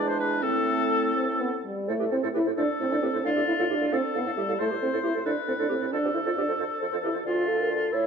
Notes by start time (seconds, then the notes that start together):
Already playing: E2 G#3 D4
0.07 C5
0.20 B4
0.42 A2 A3 C4 A4
1.16 C4
1.40 B3
1.65 G3
1.87 A2 A3 A4 C5
1.99 A2 G4 B4
2.11 A2 C4 A4 C5
2.22 A2 A4 C5
2.33 A2 E4 G4 B4
2.45 A2 A4 C5
2.57 A2 D4 A4 C5
2.80 A2 C4 A4 C5
2.91 A2 D4 A4 C5
3.02 A2 C4 G4 B4
3.12 A2 A4 C5
3.24 A2 D4 F4 A4 F5
3.36 A2 G4 E5
3.47 A2 E4 A4 F5
3.59 A2 F4 A4 F5
3.70 A2 D4 G4 E5
3.81 A2 A4 F5
3.92 A2 C4 A4 F5
4.14 A2 B3 A4 F5
4.26 A2 A4 F5
4.37 A2 G3 G4 E5
4.49 A2 A4 F5
4.59 A2 A3 A4 C5
4.70 A2 G4 B4
4.82 A2 C4 A4 C5
4.93 A2 A4 C5
5.03 A2 E4 G4 B4
5.15 A2 A4 C5
5.26 A2 D4 A4 B4 C5
5.48 A2 C4 A4 C5
5.59 A2 D4 A4 C5
5.69 A2 C4 G4 B4
5.81 A2 A4 C5
5.92 F2 D4 A4 C5
6.03 F2 G4 B4
6.14 F2 E4 A4 C5
6.25 F2 F4 A4 C5
6.36 F2 D4 G4 B4
6.48 F2 A4 C5
6.59 F2 A4 C5
6.80 F2 A4 C5
6.91 F2 A4 C5
7.02 F2 E4 G4 B4
7.13 F2 A4 C5
7.24 D2 F4 D5
7.47 A4 F5
7.60 A#4
7.70 F4 A4 D5
7.92 A2 E4 C#5 E5